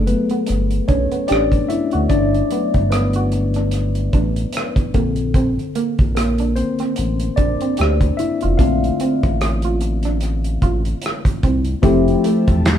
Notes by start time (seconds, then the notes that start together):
Already playing: F#1 A3 G#4 A4
0.07 F#3 A3 B3 B4, muted clean electric guitar stroke, closed hi-hat
0.29 B3, closed hi-hat
0.46 G1, muted clean electric guitar stroke, cross-stick, closed hi-hat
0.71 closed hi-hat
0.88 B1 C#4 D4 C#5, kick, closed hi-hat
1.12 B3, closed hi-hat
1.28 A1 D4 G4 D5, closed hi-hat
1.32 cross-stick
1.52 kick, closed hi-hat
1.69 E4 E5, muted clean electric guitar stroke, closed hi-hat
1.91 D2 F#4, closed hi-hat
2.09 G1 D4 D5, kick, closed hi-hat
2.34 closed hi-hat
2.50 F#3 A3 B3, closed hi-hat
2.74 G1, kick, closed hi-hat
2.90 B3 B4, cross-stick, closed hi-hat
3.13 F#4, closed hi-hat
3.32 muted clean electric guitar stroke, closed hi-hat
3.54 D4, cross-stick, closed hi-hat
3.71 cross-stick, closed hi-hat
3.95 closed hi-hat
4.13 A1 D4, kick, closed hi-hat
4.36 closed hi-hat
4.53 closed hi-hat
4.57 cross-stick
4.76 kick, closed hi-hat
4.93 A#1 D3 A#3 C4 A4, kick, closed hi-hat
5.16 closed hi-hat
5.34 C4, kick, closed hi-hat
5.59 closed hi-hat
5.75 A#3, closed hi-hat
5.99 A#1, kick, closed hi-hat
6.15 A#3 A#4, cross-stick, closed hi-hat
6.38 D4, closed hi-hat
6.56 C4 C5, muted clean electric guitar stroke, closed hi-hat
6.79 C4, cross-stick, closed hi-hat
6.96 A1, muted clean electric guitar stroke, closed hi-hat
7.20 closed hi-hat
7.36 A#1 D4 D5, kick, closed hi-hat
7.61 C4, closed hi-hat
7.77 D2 G4, closed hi-hat
7.81 cross-stick
8.01 kick, closed hi-hat
8.17 E4 E5, muted clean electric guitar stroke, closed hi-hat
8.41 F1 F4, closed hi-hat
8.57 A#1 D3 A3 C4 D4 F4 F5, kick, closed hi-hat
8.84 closed hi-hat
9.00 C4, closed hi-hat
9.23 A1, kick, closed hi-hat
9.41 cross-stick, closed hi-hat
9.62 F4, closed hi-hat
9.81 muted clean electric guitar stroke, closed hi-hat
10.03 D4, cross-stick, closed hi-hat
10.21 cross-stick, closed hi-hat
10.44 closed hi-hat
10.62 A1 F4, kick, closed hi-hat
10.85 closed hi-hat
11.02 closed hi-hat
11.06 cross-stick
11.25 kick, closed hi-hat
11.43 C2 C4, kick, closed hi-hat
11.65 closed hi-hat
11.82 F1 F3 A3 C4 E4 G4 E5 G5 A5, kick, closed hi-hat
12.08 closed hi-hat
12.24 A3, closed hi-hat
12.48 E1, kick, closed hi-hat
12.65 finger snap, snare, closed hi-hat